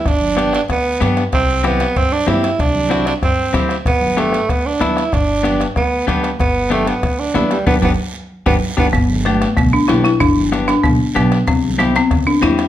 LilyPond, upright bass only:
\new Staff \with { instrumentName = "Upright bass" } { \clef bass \time 4/4 \key g \major \tempo 4 = 189 g,,2 d,4 g,4 | c,2 g,4 g,4 | c,2 g,4 d,4 | g,,2 d,4 d,4 |
g,,2 d,4 d,4 | g,,2 d,4 d,4 | g,,8 g,,8 r4. g,,8 r8 g,,8 | g,,2 b,,8 r8 b,,4 |
g,,2 b,,8 r8 b,,4 | c,2 e,8 r8 e,4 | }